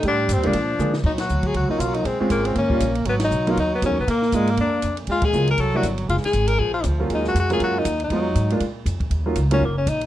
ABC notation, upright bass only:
X:1
M:4/4
L:1/8
Q:"Swing" 1/4=238
K:Bb
V:1 name="Upright bass" clef=bass
A,,2 (3G,, E,, C,, B,,2 D,2 | [K:Ebm] ^A,,2 =D,,2 ^C,, z =B,,,2 | B,,, z A,,,2 =G,,,2 B,,,2 | A,,,2 C,,2 E,,2 (3G,, E,, C,, |
B,,2 A,,2 G,,2 F,,2 | E,,2 D,,2 =C,,2 =G,,,2 | F,,, z A,,,2 B,,,2 =D,,2 | E,,2 F,,2 G,,2 E,,2 |
F,,2 A,,2 B,,2 F,,2 | E,,2 D,,2 G,,,2 B,,,2 |]